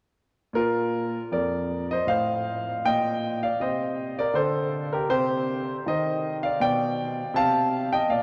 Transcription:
0.53 A#2 F4 A#4
1.32 F2 A#4 D5
1.91 C5 D#5
2.07 A2 C5 F5
2.85 A#2 D#5 G5
3.43 D5 F5
3.60 C3 C5 D#5
4.19 A#4 D5
4.34 D3 A4 C5
4.93 G4 A#4
5.09 C3 G4 C5
5.86 D#3 C5 D#5
6.43 D5 F5
6.60 B2 D5 G5
7.34 C3 F5 A5
7.93 D#5 G5
8.09 A#2 D5 F5

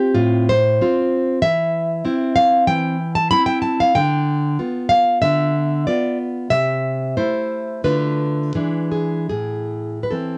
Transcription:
Already playing: C4 F4 G4
0.15 A2 F4
0.49 C5
0.81 C4 F4
1.42 E3 E5
2.05 C4 E4
2.36 F5
2.67 E3 G5
3.15 A5
3.31 C4 E4 B5
3.46 G5
3.62 A5
3.80 F5
3.95 D3 G5
4.59 B3 F4
4.89 F5
5.22 D3 E5
5.87 B3 F4 D5
6.50 C3 E5
7.17 A3 E4 C5
7.84 D3 A3 F4 B4
8.55 E3 G#3 D4
8.92 G#4
9.29 A2 G#4
10.03 B4
10.11 E3 C4 A4

